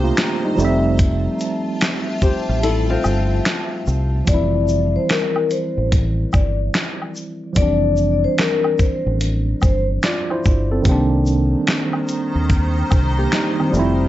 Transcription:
Already playing: C2 D#3 A#3 G4 C5 A#5
0.04 A3 F4
0.17 finger snap, snare, closed hi-hat, shaker
0.45 G3 D#4
0.55 F1 F3 G3 F4 E5 A5, shaker
0.59 A3 C4, shaker
0.64 E5
0.98 kick, closed hi-hat, shaker
1.39 closed hi-hat, shaker
1.41 shaker
1.81 finger snap, snare, closed hi-hat, shaker
2.21 G4 C5, kick, shaker
2.49 A1
2.63 E4 A4, closed hi-hat, shaker
2.90 C4 F4
3.04 G1, high woodblock, shaker
3.45 finger snap, snare, closed hi-hat, shaker
3.86 C2, shaker
3.88 shaker
4.25 F1 F3 G3 D5, kick, closed hi-hat, shaker
4.29 E3 C4
4.34 E4
4.68 shaker
4.96 C5
5.09 A#4, finger snap, snare, closed hi-hat, shaker
5.36 high woodblock
5.50 C5, closed hi-hat, shaker
5.78 A1
5.92 kick, closed hi-hat, shaker
6.33 G1 D5, kick, high woodblock, shaker
6.74 finger snap, snare, closed hi-hat, shaker
7.02 high woodblock
7.15 shaker
7.17 shaker
7.53 F1 F3 G3, kick, closed hi-hat, shaker
7.57 E3 C4 D5
7.62 D4
7.96 shaker
8.24 C5
8.38 A#4, finger snap, snare, closed hi-hat, shaker
8.64 high woodblock
8.79 C5, kick, closed hi-hat, shaker
9.06 A1
9.21 closed hi-hat, shaker
9.62 G1 C5, kick, high woodblock, shaker
10.03 F4 D5, finger snap, snare, closed hi-hat, shaker
10.30 E4 C5, high woodblock
10.44 shaker
10.46 G1, kick, shaker
10.72 C4 A4
10.82 C2 D#3 G3 C5 A#5, kick, closed hi-hat, shaker
10.87 A#3 C4
10.91 D4
11.25 shaker
11.67 finger snap, snare, closed hi-hat, shaker
11.93 high woodblock
12.08 closed hi-hat, shaker
12.35 D#2
12.50 kick, closed hi-hat, shaker
12.91 C2, kick, high woodblock, shaker
13.19 A#3 G4
13.32 G3 D#4, finger snap, snare, closed hi-hat, shaker
13.60 D#3 C4, high woodblock
13.70 F1 F3 G3, shaker
13.74 A3 C4, shaker
13.79 E4

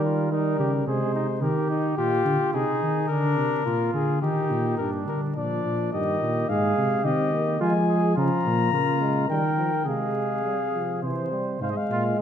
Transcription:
Already playing: D#3 G3 A#4
0.04 F4
0.31 G3 D#4 A#4
0.59 C#3 G4
0.87 C3 G#3 G#4 C5
1.15 D#4
1.41 D#3 G4 A#4
1.70 D#4
1.97 A#2 F4 G4
2.25 D3
2.53 C3 D#4 G#4
2.82 D#3
3.09 D3 D4 A#4
3.37 C3
3.65 A#2 F4
3.93 D3 G#4
4.22 D#3 D#4 G4
4.50 A#2
4.78 G2 G3 D4 A#4
5.07 D3 A#4
5.36 A#2 F3 D4 D5
5.64 A#2
5.93 G2 D#3 G4 D#5
6.21 A#2
6.49 G#2 G#3 G#4 F5
6.77 C3
7.04 D#3 C4 G4 D#5
7.33 A#3
7.60 F3 G#3 F4 G#5
7.88 G#4
8.15 C#3 F3 F4 A#5
8.45 A#2
8.72 C#3 A#3 F4
9.01 G#3
9.28 D#3 G3 A#4 G5
9.58 F3
9.85 C3 G#3 G#4 F5
10.45 G3
10.73 F3
11.03 C3 E3 C5
11.31 G3
11.60 G#2 G#3 C5 F5
11.71 D#5
11.77 F5
11.90 A#2 F4

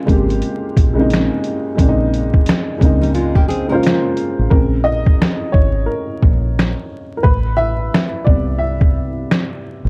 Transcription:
Already playing: C#3 G#3 A#3 C4 F4
0.05 G#1 C#3 G#3 A#3, kick
0.09 C4 G4, closed hi-hat
0.30 closed hi-hat
0.42 closed hi-hat
0.77 A#1, kick, closed hi-hat
0.94 C#3 G#3 A#3
0.99 C4 D#4
1.10 finger snap, snare, closed hi-hat
1.44 closed hi-hat
1.75 A#1 C#3 G#3 A#3, kick, closed hi-hat
1.80 C4 D4
1.89 D#4
2.14 closed hi-hat
2.34 kick
2.46 finger snap, snare, closed hi-hat
2.78 C#2 C#3 G#3 A#3, kick
2.82 C4 D#4, closed hi-hat
3.01 G3 D#4, closed hi-hat
3.14 G#3 F4, closed hi-hat
3.35 A#3 G4, kick
3.48 C4 G#4, closed hi-hat
3.67 C#3 G#3 A#3 C#4 A#4
3.72 F4 C5
3.83 finger snap, snare, closed hi-hat
4.17 closed hi-hat
4.39 A1
4.50 A#1 C#3 G#3 C4 A#4, kick
4.84 D#5
5.06 kick
5.22 finger snap, snare
5.52 G#1 C#5, kick
5.86 A#4
6.23 A#1, kick
6.59 finger snap, snare
7.17 A#4
7.23 A1 B4, kick
7.57 E5
7.94 finger snap, snare
8.25 C2 C3 G3 B3 D5, kick
8.59 E5
8.81 kick
9.31 finger snap, snare
9.85 A1

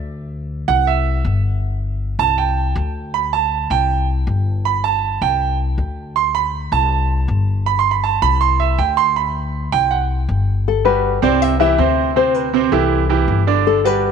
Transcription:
Already playing: D2
0.68 C2 F#5
0.87 E5
1.24 G1
2.19 C2 A5
2.38 G5
2.75 D2
3.14 B5
3.33 A5
3.70 C2 G5
4.27 G1
4.65 B5
4.84 A5
5.21 C2 G5
5.78 D2
6.16 C6
6.35 B5
6.72 C2 A5
7.28 G1
7.66 B5
7.79 C6
7.91 B5
8.04 A5
8.22 C2 B5
8.41 C6
8.60 E5
8.78 D2 G5
8.97 C6
9.16 B5
9.72 C2 G5
9.91 F#5
10.29 G1
10.68 A4
10.85 G3 F#4 G4 B4
11.22 C2 C3 C4 C5 D5
11.42 E5
11.60 E3 E4 G4 E5
11.78 D2 C3 C4 C5
12.16 C3 C4 C5
12.34 B4
12.54 C3 C4 C5
12.72 C2 E3 E4 G4 A4
13.09 E3 E4 G4
13.28 G1
13.47 D3 D4 D5
13.67 A4
13.84 G3 F#4 G4 B4

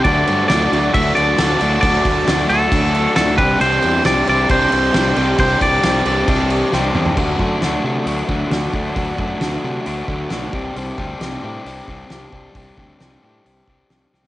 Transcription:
Already playing: D5
0.04 D2 D3 F#3 A3 D4 F#4 D5 E5 A5, kick, crash
0.27 G2, crash
0.48 D2 D3 F#3 A3 D4 F#4 D5, snare, crash
0.71 D2 D3 F#3 A3 D4 F#4, crash
0.93 D2 D3 F#3 A3 D4 F#4 E5, kick, crash
1.15 D2 D5, crash
1.38 D2 D3 F#3 A3 D4 F#4, snare, crash
1.61 D2 D3 F#3 A3 D4 F#4, crash
1.81 D2 D3 F#3 A3 D4 F#4 D5, kick, crash
2.05 D2, kick, crash
2.27 D2 D3 F#3 A3 D4 F#4, snare, crash
2.49 D2 D3 F#3 A3 D4 F#4 A4, crash
2.71 D2 D3 F#3 A3 D4 F#4, kick, crash
2.95 crash
3.15 D2 D3 F#3 A3 D4 F#4 A4, snare, crash
3.38 C2 C3 G3 C4 D4 G4 B4 C5 C6, kick, crash
3.59 C2 C3 G3 C4 D4 G4 C5, crash
3.82 E2, crash
4.05 C2 C3 G3 C4 D4 G4 D5, snare, crash
4.27 C2 C3 G3 C4 D4 G4 D5, crash
4.49 C2 C3 G3 C4 D4 G4 C5, kick, crash
4.72 C2, crash
4.94 C2 C3 G3 C4 D4 G4, snare, crash
5.15 C2 C3 G3 C4 D4 G4 D6, crash
5.38 C2 C3 G3 C4 D4 G4 C5, kick, crash
5.61 C2 D5, kick, crash
5.83 C2 C3 G3 C4 D4 G4, snare, crash
6.05 C2 C3 G3 C4 D4 G4, crash
6.27 C2 C3 G3 C4 D4 G4, kick, crash
6.50 crash
6.73 C2 C3 G3 C4 D4 G4, snare
6.95 E2 C3 G3 C4 D4 G4, mid tom
7.06 floor tom
7.17 D2 D3 F#3 A3 D4 F#4, kick, crash
7.39 F#2 D3 F#3 A3 D4 F#4, kick
7.62 D2 D3 F#3 A3 D4 F#4, snare, open hi-hat
7.84 C3 D3 F#3 A3 D4 F#4
8.06 D2 D3 F#3 A3 D4 F#4, open hi-hat
8.28 D2 D3 F#3 A3 D4 F#4, kick
8.51 D2 D3 F#3 A3 D4 F#4, snare, open hi-hat
8.73 D2 D3 F#3 A3 D4 F#4, kick
8.95 D2 D3 F#3 A3 D4 F#4, kick, open hi-hat
9.18 F#2 D3 F#3 A3 D4 F#4, kick
9.40 D2 D3 F#3 A3 D4 F#4, snare, open hi-hat
9.63 C3 D3 F#3 A3 D4 F#4
9.85 D2 D3 F#3 A3 D4 F#4, open hi-hat
10.07 D2 D3 F#3 A3 D4 F#4, kick
10.30 B1 D3 F#3 A3 D4 F#4, snare, open hi-hat
10.53 C2 C3 G3 C4 D4 G4, kick
10.76 C2 C3 G3 C4 D4 G4, open hi-hat
10.98 D2 C3 G3 C4 D4 G4, kick
11.20 C2 C3 G3 C4 D4 G4, snare, open hi-hat
11.43 A2 C3 G3 C4 D4 G4
11.65 C2 C3 G3 C4 D4 G4, open hi-hat
11.88 C2 C3 G3 C4 D4 G4, kick
12.10 C2 C3 G3 C4 D4 G4, snare, open hi-hat
12.32 C2 C3 G3 C4 D4 G4, kick
12.55 C2 C3 G3 C4 D4 G4, kick, open hi-hat
12.77 D2 C3 G3 C4 D4 G4, kick
13.00 C2 C3 G3 C4 D4 G4, snare, open hi-hat
13.22 A2 C3 G3 C4 D4 G4
13.44 C2 C3 G3 C4 D4 G4, open hi-hat
13.67 C2 C3 G3 C4 D4 G4, kick
13.89 C2 C3 G3 C4 D4 G4, snare, open hi-hat
14.12 C2 C3 G3 C4 D4 G4, snare
14.24 snare

